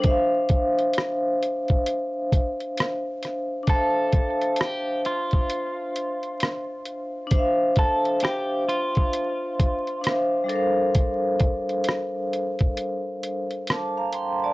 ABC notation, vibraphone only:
X:1
M:4/4
L:1/16
Q:"Swing 16ths" 1/4=66
K:Dm
V:1 name="Vibraphone"
[Dcef]16 | [Dcef]16 | [Dcef]12 [Dcef]2 [G,DABcf]2- | [G,DABcf]12 [ad'] [fb] [gc'] [da] |]